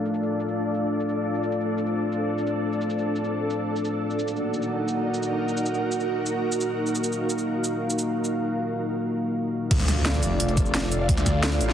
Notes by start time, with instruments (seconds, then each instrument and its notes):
Already playing: analog synth pad A3 F4 D5 F5, ambient pad D4 A4 D5
0.05 cabasa
0.14 cabasa
0.23 cabasa
0.40 cabasa
0.49 cabasa
0.74 cabasa
1.00 cabasa
1.09 cabasa
1.35 cabasa
1.43 analog synth pad C5, cabasa
1.52 cabasa
1.61 cabasa
1.78 cabasa
1.86 cabasa
2.12 cabasa
2.38 cabasa
2.47 cabasa
2.73 cabasa
2.81 cabasa
2.90 cabasa
2.99 cabasa
3.16 cabasa
3.24 cabasa
3.50 cabasa
3.76 cabasa
3.85 cabasa
4.11 cabasa
4.19 analog synth pad A#3 D#4 F#4 F#5, ambient pad D#4, cabasa
4.28 cabasa
4.36 cabasa
4.54 cabasa
4.62 cabasa
4.69 ambient pad A#4
4.88 cabasa
4.93 ambient pad F#4
5.14 cabasa
5.23 cabasa
5.49 cabasa
5.57 cabasa
5.66 cabasa
5.74 cabasa
5.92 cabasa
6.00 cabasa
6.26 cabasa
6.52 cabasa
6.61 cabasa
6.86 cabasa
6.95 analog synth pad F5, cabasa
7.04 cabasa
7.12 cabasa
7.30 cabasa
7.38 cabasa
7.64 cabasa
7.90 cabasa
7.99 cabasa
8.24 cabasa
9.71 detuned saw bass D2, analog synth pad A3 F4 D5 F5, ambient pad D4, kick, closed hi-hat, crash, impact
9.76 ambient pad A4, snare, closed hi-hat, cabasa
9.88 snare, closed hi-hat, cabasa
10.05 ambient pad F5, snare, closed hi-hat
10.14 closed hi-hat
10.23 detuned saw bass F1, closed hi-hat, cabasa
10.40 closed hi-hat
10.49 closed hi-hat
10.53 ambient pad D5, kick, closed hi-hat, cabasa
10.66 cabasa
10.74 snare, closed hi-hat
10.92 closed hi-hat, cabasa
11.09 detuned saw bass D2, kick, closed hi-hat
11.17 snare, closed hi-hat, cabasa
11.26 kick, snare, closed hi-hat, cabasa
11.43 snare, closed hi-hat
11.52 closed hi-hat
11.61 detuned saw bass A1, closed hi-hat, cabasa
11.69 snare